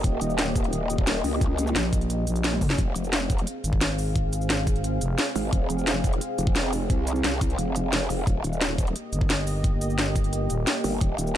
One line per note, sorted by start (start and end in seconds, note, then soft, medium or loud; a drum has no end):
0.00 2.74 A#3 medium
0.00 2.74 G4 medium
0.00 2.74 D#5 loud
0.04 0.20 D#1 loud
0.04 kick loud
0.04 closed hi-hat medium
0.21 0.71 D#1 loud
0.21 closed hi-hat medium
0.21 shaker medium
0.30 shaker soft
0.38 snare loud
0.38 closed hi-hat medium
0.56 kick loud
0.56 closed hi-hat medium
0.56 shaker medium
0.64 closed hi-hat soft
0.73 1.23 D#1 loud
0.73 closed hi-hat medium
0.73 shaker soft
0.90 closed hi-hat medium
0.90 shaker medium
0.98 kick loud
1.07 snare loud
1.07 closed hi-hat medium
1.24 1.74 C#2 medium
1.24 open hi-hat medium
1.24 shaker medium
1.41 kick loud
1.41 closed hi-hat medium
1.58 closed hi-hat medium
1.58 shaker medium
1.67 shaker soft
1.76 2.26 A#1 loud
1.76 snare loud
1.76 closed hi-hat medium
1.93 kick loud
1.93 closed hi-hat medium
1.93 shaker medium
2.01 closed hi-hat soft
2.10 closed hi-hat loud
2.10 shaker soft
2.27 2.77 A#1 medium
2.27 closed hi-hat medium
2.27 shaker medium
2.36 closed hi-hat soft
2.36 shaker soft
2.44 snare loud
2.44 closed hi-hat medium
2.53 high tom medium
2.61 kick medium
2.61 open hi-hat medium
2.61 mid tom medium
2.61 shaker medium
2.70 snare medium
2.70 closed hi-hat soft
2.78 2.94 F1 loud
2.78 8.23 C4 medium
2.78 8.23 G#4 medium
2.78 8.23 F5 medium
2.78 kick loud
2.78 closed hi-hat loud
2.96 3.46 F1 loud
2.96 closed hi-hat medium
2.96 shaker medium
3.04 shaker soft
3.13 snare loud
3.13 closed hi-hat loud
3.30 kick loud
3.30 closed hi-hat medium
3.30 shaker medium
3.38 closed hi-hat soft
3.47 closed hi-hat loud
3.47 shaker soft
3.64 5.00 G#1 loud
3.64 closed hi-hat medium
3.64 shaker medium
3.73 kick loud
3.81 snare loud
3.81 closed hi-hat loud
3.98 open hi-hat medium
3.98 shaker medium
4.16 kick loud
4.16 closed hi-hat loud
4.33 closed hi-hat medium
4.33 shaker medium
4.41 shaker soft
4.50 snare loud
4.50 closed hi-hat loud
4.67 kick loud
4.67 closed hi-hat medium
4.67 shaker medium
4.76 closed hi-hat soft
4.84 closed hi-hat loud
4.84 shaker soft
5.01 5.17 F1 medium
5.01 closed hi-hat medium
5.01 shaker medium
5.18 snare loud
5.18 closed hi-hat loud
5.36 5.51 G#1 loud
5.36 open hi-hat medium
5.36 shaker medium
5.53 5.69 F1 loud
5.53 kick loud
5.53 closed hi-hat medium
5.70 6.20 F1 loud
5.70 closed hi-hat medium
5.70 shaker medium
5.78 shaker soft
5.87 snare loud
5.87 closed hi-hat loud
6.04 kick loud
6.04 closed hi-hat medium
6.04 shaker medium
6.13 closed hi-hat soft
6.21 closed hi-hat loud
6.21 shaker soft
6.38 6.89 F1 loud
6.38 closed hi-hat medium
6.38 shaker medium
6.47 kick loud
6.56 snare loud
6.56 closed hi-hat medium
6.73 open hi-hat medium
6.73 shaker medium
6.90 7.23 C2 loud
6.90 kick loud
6.90 closed hi-hat medium
7.07 closed hi-hat medium
7.07 shaker medium
7.16 shaker soft
7.24 7.57 C2 loud
7.24 snare loud
7.24 closed hi-hat medium
7.41 kick loud
7.41 closed hi-hat medium
7.41 shaker medium
7.50 closed hi-hat soft
7.58 8.09 F1 loud
7.58 closed hi-hat medium
7.58 shaker soft
7.76 closed hi-hat medium
7.76 shaker medium
7.93 snare loud
7.93 closed hi-hat medium
8.10 8.26 F1 loud
8.10 open hi-hat medium
8.10 shaker medium
8.27 8.43 D#1 loud
8.27 11.37 A#3 medium
8.27 11.37 G4 medium
8.27 10.99 D#5 loud
8.27 kick loud
8.27 closed hi-hat medium
8.44 8.94 D#1 loud
8.44 closed hi-hat medium
8.44 shaker medium
8.53 shaker soft
8.61 snare loud
8.61 closed hi-hat medium
8.78 kick loud
8.78 closed hi-hat medium
8.78 shaker medium
8.87 closed hi-hat soft
8.96 closed hi-hat medium
8.96 shaker soft
9.13 10.49 G1 medium
9.13 closed hi-hat medium
9.13 shaker medium
9.21 kick loud
9.30 snare loud
9.30 closed hi-hat medium
9.47 open hi-hat medium
9.47 shaker medium
9.64 kick loud
9.64 closed hi-hat medium
9.81 closed hi-hat medium
9.81 shaker medium
9.90 shaker soft
9.98 snare loud
9.98 closed hi-hat medium
10.16 kick loud
10.16 closed hi-hat medium
10.16 shaker medium
10.24 closed hi-hat soft
10.33 closed hi-hat medium
10.33 shaker soft
10.50 10.66 D#1 medium
10.50 closed hi-hat medium
10.50 shaker medium
10.67 snare loud
10.67 closed hi-hat medium
10.84 11.00 G1 medium
10.84 open hi-hat medium
10.84 shaker medium
11.01 11.17 D#1 loud
11.01 11.37 F5 medium
11.01 kick loud
11.01 closed hi-hat medium
11.18 11.37 D#1 loud
11.18 closed hi-hat medium
11.18 shaker medium
11.27 shaker soft